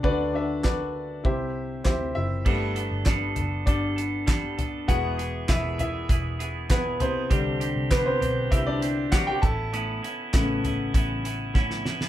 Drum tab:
CC |----------------|x---------------|----------------|----------------|
HH |----------------|--x-x-x-x-x-x-x-|x-x-x-x-x-x-x-x-|x-x-x-x-x-x-x-x-|
CP |----x-------x---|----x-------x---|----x-------x---|----x-------x---|
SD |----o-------o---|----o-------o---|----o-------o---|----o-------o---|
FT |----------------|------o-------o-|------o-------o-|------o-------o-|
BD |o---o---o---o---|o---o---o---o---|o---o---o---o---|o---o---o---o-o-|

CC |----------------|
HH |x-x-x-x-x-x-----|
CP |----x-----------|
SD |----o-------oooo|
FT |------o---------|
BD |----o---o---o---|